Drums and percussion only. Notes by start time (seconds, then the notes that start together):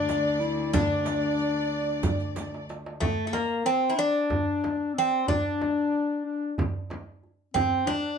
0.09 riq, darbuka tek, frame drum
0.41 riq, darbuka ka
0.73 riq, frame drum, darbuka dum
1.05 riq, darbuka tek, frame drum
1.39 riq, darbuka ka
2.03 riq, frame drum, darbuka dum
2.20 riq, darbuka ka
2.36 riq, darbuka tek, frame drum
2.54 darbuka ka
2.69 riq, darbuka tek
2.86 darbuka ka
3.02 frame drum, darbuka dum
3.33 darbuka tek, frame drum
3.68 darbuka ka
4.30 frame drum, darbuka dum
4.64 darbuka tek, frame drum
4.97 darbuka ka
5.28 darbuka dum, frame drum
5.61 darbuka tek, frame drum
5.94 darbuka ka
6.58 darbuka dum, frame drum
6.90 darbuka tek, frame drum
7.23 darbuka ka
7.55 darbuka dum, frame drum
7.87 darbuka tek, frame drum